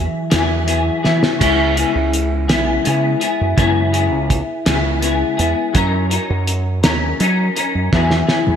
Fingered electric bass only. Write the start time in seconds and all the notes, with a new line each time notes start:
0.34 E2
1.06 E3
1.41 C#2
1.95 C#2
2.50 B1
2.87 C#3
3.41 F#2
3.58 F#2
4.13 C#2
4.66 C#2
5.39 E2
5.75 F#2
6.30 F#2
6.84 D#2
7.20 F#3
7.75 F#2
7.93 E2
8.48 E2